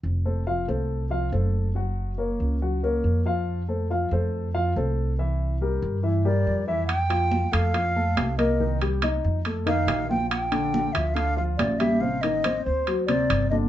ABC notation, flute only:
X:1
M:4/4
L:1/8
Q:1/4=140
K:F
V:1 name="Flute"
z8 | z8 | z8 | z4 z d2 e |
g3 f4 _e- | _e z4 f2 g | g3 e f f d e | f _e2 c2 d2 e |]